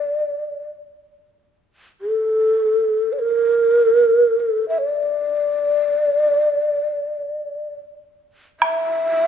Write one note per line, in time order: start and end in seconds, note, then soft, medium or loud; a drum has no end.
0.00 0.69 D5 medium
2.01 3.14 A4 medium
3.12 3.21 D5 soft
3.19 4.41 A#4 medium
4.40 4.68 A4 medium
4.68 4.80 E5 medium
4.78 7.74 D5 medium
8.60 9.27 E5 medium
8.60 taiko rim soft